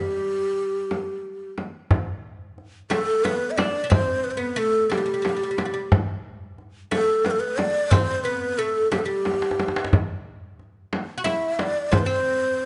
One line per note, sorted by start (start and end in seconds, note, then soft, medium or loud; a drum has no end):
0.00 1.53 G3 medium
0.00 1.52 G4 medium
0.91 frame drum medium
1.58 frame drum medium
1.91 tombak dum medium
1.91 frame drum medium
2.58 tombak ka soft
2.90 3.25 A3 medium
2.90 3.26 A4 medium
2.90 tombak tek medium
2.90 frame drum medium
3.24 3.59 B3 medium
3.24 3.52 B4 medium
3.24 tombak tek medium
3.24 frame drum medium
3.51 3.58 E5 medium
3.57 3.83 D4 medium
3.57 3.93 D5 medium
3.57 tombak tek medium
3.57 frame drum medium
3.84 3.90 D4 medium
3.90 4.39 C4 medium
3.90 4.25 C5 loud
3.90 frame drum medium
3.90 tombak dum medium
4.24 4.32 B4 medium
4.31 4.40 C5 medium
4.37 4.56 B3 medium
4.37 4.60 B4 medium
4.56 4.89 A3 medium
4.56 4.94 A4 medium
4.56 tombak ka soft
4.90 4.96 G3 medium
4.90 5.92 G4 medium
4.90 tombak tek medium
4.90 frame drum medium
4.98 5.05 G3 soft
5.06 5.13 G3 soft
5.14 5.21 G3 soft
5.22 5.28 G3 soft
5.22 tombak tek medium
5.22 frame drum medium
5.29 5.35 G3 soft
5.37 5.42 G3 soft
5.43 5.50 G3 soft
5.51 5.57 G3 soft
5.58 5.64 G3 soft
5.58 tombak tek medium
5.58 frame drum medium
5.65 5.72 G3 soft
5.74 5.81 G3 soft
5.92 frame drum medium
5.92 tombak dum loud
6.58 tombak ka soft
6.91 7.95 A3 medium
6.91 7.27 A4 loud
6.91 tombak tek medium
6.91 frame drum medium
7.25 7.32 B4 medium
7.25 tombak tek medium
7.25 frame drum medium
7.31 7.41 A4 medium
7.40 7.60 B4 medium
7.58 7.93 D5 medium
7.58 tombak tek medium
7.58 frame drum medium
7.91 8.26 C4 medium
7.91 8.25 C5 loud
7.91 tombak dum medium
7.91 frame drum medium
8.24 8.58 B3 medium
8.24 8.60 B4 medium
8.58 8.91 A3 medium
8.58 8.91 A4 medium
8.91 9.04 G3 medium
8.91 9.00 G4 medium
8.91 tombak tek medium
8.91 frame drum medium
8.99 9.07 A4 medium
9.05 9.88 G3 medium
9.05 9.92 G4 medium
9.25 tombak tek medium
9.25 frame drum medium
9.33 tombak ka medium
9.42 tombak tek medium
9.51 tombak ka medium
9.59 tombak tek medium
9.59 frame drum medium
9.68 tombak ka medium
9.76 tombak tek medium
9.84 tombak ka medium
9.93 tombak dum medium
9.93 frame drum medium
10.59 tombak ka soft
10.93 tombak tek medium
10.93 frame drum medium
11.18 11.24 F#4 medium
11.24 11.88 E4 medium
11.24 11.62 E5 medium
11.24 frame drum medium
11.59 11.94 D5 medium
11.59 tombak tek medium
11.59 frame drum medium
11.92 12.05 C4 medium
11.92 12.00 C5 medium
11.92 frame drum medium
11.92 tombak dum medium
11.98 12.08 B4 medium
12.06 12.65 C4 medium
12.06 12.65 C5 loud
12.59 tombak ka soft